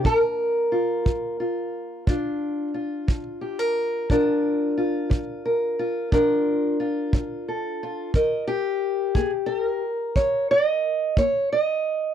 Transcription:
Already playing: steel-string acoustic guitar A#3
0.04 steel-string acoustic guitar A#2 A#4, kick
0.72 steel-string acoustic guitar F4
1.05 steel-string acoustic guitar F3, kick
1.40 steel-string acoustic guitar F4
2.07 steel-string acoustic guitar A#2 D4 F4, kick
2.16 steel-string acoustic guitar A4
2.74 steel-string acoustic guitar F4
3.08 steel-string acoustic guitar F3, kick
3.41 steel-string acoustic guitar G4
3.59 steel-string acoustic guitar A#4
4.10 steel-string acoustic guitar A#2 D4 F4 A#4, kick
4.78 steel-string acoustic guitar F4
5.10 steel-string acoustic guitar F3, kick
5.45 steel-string acoustic guitar A#4
5.79 steel-string acoustic guitar F4
6.12 steel-string acoustic guitar A#2 D4 F4 A#4, kick
6.80 steel-string acoustic guitar F4
7.13 steel-string acoustic guitar F3, kick
7.48 steel-string acoustic guitar A4
7.83 steel-string acoustic guitar F4
8.14 steel-string acoustic guitar D#3 A#4 D#5, kick
8.47 steel-string acoustic guitar G4
9.15 steel-string acoustic guitar A#3 G#4, kick
9.46 steel-string acoustic guitar A4
9.60 steel-string acoustic guitar A#4
10.16 steel-string acoustic guitar D#3 C#5, kick
10.51 steel-string acoustic guitar D#5
11.17 steel-string acoustic guitar A#3 C#5, kick
11.52 steel-string acoustic guitar D#5

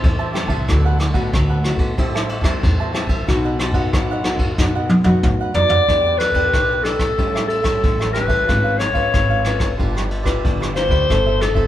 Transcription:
Already playing: nylon-string guitar G3 C4 E4, cavaquinho C5 E5 A5
0.04 upright bass E2, nylon-string guitar E3, kick, ride
0.19 cavaquinho C5 E5 A5
0.33 nylon-string guitar G3 C4 E4, cavaquinho G4 C5 E5 A5, cross-stick, ride
0.47 upright bass C2, cavaquinho C5 E5 A5, kick, ride
0.68 upright bass D2, nylon-string guitar D3 A3 B3 F#4, cavaquinho D4 A4 B4 F#5, kick, cross-stick, ride
0.85 cavaquinho A4 B4 F#5
0.99 muted cavaquinho stroke, cross-stick, ride
1.11 upright bass A1, nylon-string guitar A3 B3 F#4, cavaquinho A4 B4 F#5, kick, ride
1.32 upright bass D2, nylon-string guitar A2, cavaquinho D4 A4 B4 F#5, kick, cross-stick, ride
1.49 cavaquinho A4 B4 F#5
1.64 nylon-string guitar A3 B3 F#4, cross-stick, ride
1.76 upright bass E2, kick, ride
1.97 upright bass A1, nylon-string guitar A2 G3 C4 E4, cavaquinho G4 C5 E5 A5, kick, ride
2.15 cavaquinho C5 E5 A5, cross-stick
2.29 muted cavaquinho stroke, ride
2.41 upright bass E2, nylon-string guitar G3 C4 E4, cavaquinho C5 E5 A5, kick, cross-stick, ride
2.63 upright bass E2, nylon-string guitar E3, kick, ride
2.80 cavaquinho C5 E5 A5
2.93 nylon-string guitar G3 C4 E4, cavaquinho G4 C5 E5 A5, cross-stick, ride
3.06 upright bass A1, cavaquinho C5 E5 A5, kick, ride
3.27 upright bass B1, nylon-string guitar B2 B3 D#4 F#4, cavaquinho F#4 B4 D#5 F#5, kick, cross-stick, ride
3.44 cavaquinho B4 D#5 F#5
3.59 muted cavaquinho stroke, cross-stick, ride
3.71 upright bass F#2, nylon-string guitar B3 D#4 F#4, cavaquinho B4 D#5 F#5, kick, ride
3.93 upright bass B1, nylon-string guitar F#2, cavaquinho F#4 B4 D#5 F#5, kick, cross-stick, ride
4.11 cavaquinho B4 D#5 F#5
4.24 nylon-string guitar B3 D#4 F#4, cross-stick, ride
4.36 upright bass F#2, kick, ride
4.58 upright bass F#2, nylon-string guitar B2 B3 D#4 F#4, cavaquinho F#4 B4 D#5 F#5, kick, snare
4.75 cavaquinho B4 D#5 F#5
4.89 muted cavaquinho stroke, high tom
5.04 upright bass F#2, nylon-string guitar B3 D#4 F#4, cavaquinho B4 D#5 F#5, high tom
5.23 nylon-string guitar F#2, upright bass A2, kick, mid tom
5.41 cavaquinho B4 D#5 F#5
5.54 upright bass F#2, nylon-string guitar B3 D#4 F#4, cavaquinho F#4 B4 D#5 F#5, clarinet D5, floor tom
5.69 cavaquinho B4 D#5 F#5, floor tom
5.88 upright bass E2, nylon-string guitar E3 B3 D4 G4, cavaquinho E4 G4 B4 D5, kick, cross-stick, ride
6.05 cavaquinho G4 B4 D5
6.18 clarinet B4, muted cavaquinho stroke, cross-stick, ride
6.32 upright bass E2, nylon-string guitar B3, cavaquinho G4 B4 D5, kick, ride
6.36 nylon-string guitar D4 G4
6.53 upright bass B1, nylon-string guitar B2, cavaquinho E4 G4 B4 D5, kick, cross-stick, ride
6.71 cavaquinho G4 B4 D5
6.83 nylon-string guitar B3 D4 G4, clarinet A4, cross-stick, ride
6.99 kick, cross-stick, ride
7.18 upright bass A1, nylon-string guitar A2 G3 C#4 E4, cavaquinho G4 A4 C#5 E5, kick, ride
7.35 cavaquinho A4 C#5 E5, cross-stick
7.48 clarinet A4, muted cavaquinho stroke, ride
7.63 nylon-string guitar G3 C#4 E4, cavaquinho A4 C#5 E5, kick, cross-stick, ride
7.84 upright bass A1, nylon-string guitar E3, kick, ride
7.99 cavaquinho A4 C#5 E5, cross-stick
8.13 nylon-string guitar G3 C#4 E4, cavaquinho G4 A4 C#5 E5, clarinet B4, cross-stick, ride
8.27 upright bass A1, cavaquinho A4 C#5 E5, kick, ride
8.47 upright bass G#1, nylon-string guitar G#3 C#4 F4 B4, cavaquinho F4 B4 C#5 F5, kick, cross-stick, ride
8.64 cavaquinho B4 C#5 F5
8.78 clarinet C#5, muted cavaquinho stroke, cross-stick, ride
8.92 upright bass G#1, nylon-string guitar C#4, cavaquinho B4 C#5 F5, kick, ride
8.96 nylon-string guitar F4 B4
9.12 upright bass G#1, nylon-string guitar G#3, cavaquinho F4 B4 C#5 F5, kick, cross-stick, ride
9.30 cavaquinho B4 C#5 F5
9.45 nylon-string guitar C#4 F4 B4, cross-stick, ride
9.60 kick, cross-stick, ride
9.77 upright bass G1, nylon-string guitar G3 D4 F4 B4, cavaquinho F4 G4 B4 D5, kick, ride
9.95 cavaquinho G4 B4 D5, cross-stick
10.09 muted cavaquinho stroke, ride
10.23 nylon-string guitar D4 F4 B4, cavaquinho G4 B4 D5, kick, cross-stick, ride
10.44 upright bass G1, nylon-string guitar D3, kick, ride
10.60 cavaquinho G4 B4 D5, cross-stick
10.74 nylon-string guitar D4 F4, cavaquinho F4 G4 B4 D5, clarinet C5, cross-stick, ride
10.78 nylon-string guitar B4
10.88 upright bass D2, cavaquinho G4 B4 D5, kick, ride
11.09 upright bass G1, nylon-string guitar G3 C4 E4 A4, cavaquinho E4 A4 C5 E5, kick, cross-stick, ride
11.26 cavaquinho A4 C5 E5
11.41 clarinet A4, muted cavaquinho stroke, cross-stick, ride
11.53 upright bass G1, nylon-string guitar C4 E4 A4, cavaquinho A4 C5 E5, kick, ride

